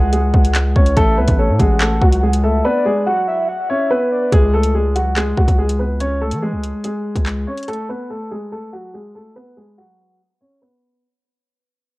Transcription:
Already playing: C#2 G#3 G#4 F#5
0.13 G#3 G#4, closed hi-hat
0.34 C#2, kick
0.45 closed hi-hat
0.55 clap, closed hi-hat
0.76 C#2 C#4 C#5, kick
0.86 closed hi-hat
0.97 A1 A3 A4 E5, kick, closed hi-hat
1.18 C#2 B3 B4
1.28 A1, kick, closed hi-hat
1.39 A3 A4 C#5
1.49 A2
1.60 A1 G#3 G#4 F#5, kick, closed hi-hat
1.81 A3 A4, clap, closed hi-hat
2.02 C#2 F#3 F#4, kick
2.13 closed hi-hat
2.23 G#3 G#4
2.33 closed hi-hat
2.44 A3 A4 E5
2.65 B3 B4 D5
2.85 G#3 G#4
3.07 F#3 F#4 F#5
3.28 E5
3.48 F#5
3.69 C#4 C#5 E5
3.90 B3 B4
4.11 D5
4.32 C#2 G#3 G#4, kick, closed hi-hat
4.54 A3 A4
4.63 closed hi-hat
4.74 G#3 G#4
4.95 F#3 F#4, closed hi-hat
5.16 G#3 G#4, clap, closed hi-hat
5.37 C#2 F#3 F#4, kick
5.48 C#2, kick, closed hi-hat
5.58 G#3 G#4
5.69 closed hi-hat
5.79 B3 B4
6.00 C#4 C#5, closed hi-hat
6.21 A3 A4
6.31 E3, closed hi-hat
6.42 G#3 G#4
6.53 C#2
6.63 closed hi-hat
6.84 G#3 G#4, closed hi-hat
7.16 C#2, kick, closed hi-hat
7.26 clap, closed hi-hat
7.47 C#4 C#5
7.58 closed hi-hat
7.63 closed hi-hat
7.68 A3 A4, closed hi-hat
7.73 closed hi-hat
7.89 B3 B4
8.10 A3 A4
8.31 G#3 G#4
8.52 A3 A4
8.73 F#3 F#4
8.94 G#3 G#4
9.15 A3 A4
9.36 B3 B4
9.57 G#3 G#4
9.78 F#3 F#4
10.41 C#4 C#5
10.62 B3 B4

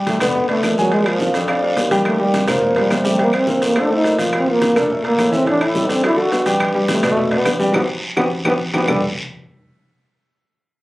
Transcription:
Already playing: G3 G4 G5
0.07 A3, high bongo, high conga, high timbale, short guiro
0.20 D3 B3 B4 D5, high conga, low conga, high timbale, short guiro, claves
0.35 high bongo, high conga, long guiro
0.49 A3 B3 B4 D5, high conga, high timbale
0.63 A#2, high bongo, low bongo, high conga, high timbale, short guiro, claves
0.77 F#3 G#3 G#4 G#5, high conga, short guiro
0.91 G#3 G#4 G#5, high bongo, high conga, high timbale, long guiro
1.06 F3, high timbale, claves
1.19 D4 D5 F5, high bongo, high conga, short guiro
1.34 F2, high bongo, high timbale, short guiro
1.48 D4 D5 F5, high bongo, high conga, high timbale, long guiro, claves
1.63 D4 D5 F5, high bongo, high conga
1.76 D#2, high bongo, low bongo, high conga, high timbale, low timbale, short guiro
1.91 G3 G4 G5, high bongo, high conga, high timbale, short guiro
2.05 A3, high bongo, high conga, high timbale, long guiro, claves
2.19 G3 G4 G5, high conga
2.34 high bongo, high conga, high timbale, short guiro
2.47 A#2 A#3 A#4 C5, high conga, low conga, high timbale, short guiro, claves
2.61 F3, high bongo, high conga, low conga, long guiro
2.76 G3 A#3 A#4 C5, high conga, high timbale
2.90 C3, high bongo, low bongo, high conga, high timbale, low timbale, short guiro, claves
3.04 G3 A3 G4 G5, high conga, short guiro
3.18 G3 A#3 G4 G5, high bongo, high conga, high timbale, long guiro
3.33 C4, high timbale, claves
3.47 A#3 A#4 C5, high bongo, high conga, short guiro
3.61 F2, high bongo, high timbale, short guiro
3.66 A#3
3.76 A3 A4 C5, high bongo, high conga, high timbale, long guiro, claves
3.81 D4
3.90 A3 D#4 A4 C5, high bongo, high conga
4.04 A#2, high bongo, low bongo, high conga, high timbale, short guiro
4.18 F3 F4 F5, high bongo, high conga, high timbale, short guiro
4.33 high bongo, high conga, high timbale, long guiro, claves
4.38 C4
4.47 F3 F4 F5, high conga
4.51 A#3
4.62 high bongo, high conga, high timbale, short guiro
4.75 A#2 A3 D4 A4 A#4, high conga, low conga, high timbale, short guiro, claves
4.90 A3, high bongo, high conga, long guiro
5.04 A3 A#3 A4 A#4, high conga, high timbale
5.18 A2, high bongo, low bongo, high conga, high timbale, low timbale, short guiro, claves
5.32 E3 C4 E4 E5, high conga, short guiro
5.45 E3 D4 E4 E5, high bongo, high conga, high timbale, long guiro
5.61 E4, high conga, high timbale, claves
5.74 G3 G4 A4, high bongo, high conga, short guiro
5.87 D3 B3, high bongo, high timbale, short guiro
5.92 C4
6.03 F#3 E4 F#4 A4, high bongo, high conga, high timbale, long guiro, claves
6.16 F#3 F#4 A4, high bongo, high conga
6.32 G2, high bongo, low bongo, high conga, high timbale, low timbale, short guiro
6.46 G3 G4 G5, high bongo, high conga, high timbale, short guiro
6.60 high bongo, high conga, high timbale, long guiro, claves
6.74 G3 G4 G5, high conga
6.88 A3, high bongo, high conga, high timbale, short guiro
7.03 B2 B3 B4 D5, high conga, low conga, high timbale, short guiro, claves
7.09 A3
7.17 high bongo, high conga, low conga, long guiro
7.31 B3 B4 D5, high conga, high timbale
7.38 B3
7.45 G2, high bongo, low bongo, high conga, high timbale, low timbale, short guiro, claves
7.59 G3 G4 G5, high conga, short guiro
7.73 G2 B3 F#4 G4 B4, high bongo, high conga, high timbale, long guiro, claves
8.17 G2 B3 F#4 G4 B4, high bongo, high conga, high timbale, long guiro, claves
8.45 G2 B3 F#4 G4 B4, high bongo, high conga, high timbale, long guiro, claves
8.74 G2 B3 F#4 G4 B4, high bongo, high conga, high timbale, long guiro, claves
8.88 G2 G3 D4 F#4 G4 A4 B4, low bongo, low conga, low timbale, long guiro, claves

